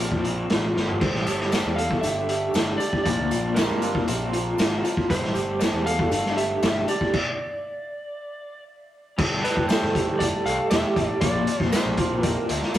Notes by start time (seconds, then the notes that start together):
Already playing: A#3 C4 D4 F4 A#4 D5
0.00 A#1 A#4
0.12 kick
0.24 C4, closed hi-hat
0.50 A1 F4, snare, closed hi-hat
0.76 G1 A#4, snare
0.88 floor tom
1.00 G1 G3 A3 D4 G4 A4 C5, kick, crash, tambourine
1.14 A1, snare
1.26 G1 G4, closed hi-hat, tambourine
1.40 snare
1.52 D5, snare, closed hi-hat, tambourine
1.65 E2
1.76 A4 F5, closed hi-hat
1.91 kick
2.01 G1 D4 E5, closed hi-hat, tambourine
2.29 G4, closed hi-hat
2.54 G1 D4, snare, closed hi-hat, tambourine
2.78 G4 D5, closed hi-hat, tambourine
2.93 kick
3.04 A#1 A#3 C4 F4 A#4 D5, kick, closed hi-hat, tambourine
3.19 D2
3.31 A#1 F4, closed hi-hat, tambourine
3.54 A#4 D5, snare, closed hi-hat, tambourine
3.70 G2
3.82 A#4, closed hi-hat, tambourine
3.95 kick
4.07 A#1 C4, closed hi-hat, tambourine
4.32 F4, closed hi-hat
4.58 G#1 C4, snare, closed hi-hat, tambourine
4.84 F4, closed hi-hat, tambourine
4.97 kick
5.09 G1 G3 A3 G4 A4 C5, kick, closed hi-hat, tambourine
5.23 A1, snare
5.34 G1 G4, closed hi-hat, tambourine
5.60 D5, snare, closed hi-hat, tambourine
5.73 E2
5.86 A4 F5, closed hi-hat
5.99 kick
6.11 G1 D4, closed hi-hat, tambourine
6.25 snare
6.36 G4 E5, closed hi-hat
6.62 G1 D4 E5, snare, closed hi-hat, tambourine
6.88 G4 D5, closed hi-hat, tambourine
7.01 kick
7.13 kick, crash
9.18 G1 G3 A3 D4 G4 A4, kick, crash
9.44 B4 D5, snare, closed hi-hat
9.57 G1, kick
9.69 A4 C5, snare, closed hi-hat, tambourine
9.83 G1, snare
9.95 G4, kick, closed hi-hat
10.08 G1
10.19 D5, kick, closed hi-hat
10.45 C2 A4 F5, closed hi-hat
10.70 E1 G4 E5, snare, closed hi-hat, tambourine
10.96 A1 D5, kick, closed hi-hat
11.21 A#1 A#3 C4 F4 A#4 D5, kick, closed hi-hat
11.47 D5, closed hi-hat
11.60 A#1, kick, snare
11.72 A#4 C5, snare, closed hi-hat, tambourine
11.85 A#1
11.97 F4, kick, closed hi-hat
12.11 A#1
12.23 A#4 D5, kick, closed hi-hat
12.49 D2 A#4, closed hi-hat
12.62 snare
12.74 G1 F4, closed hi-hat, tambourine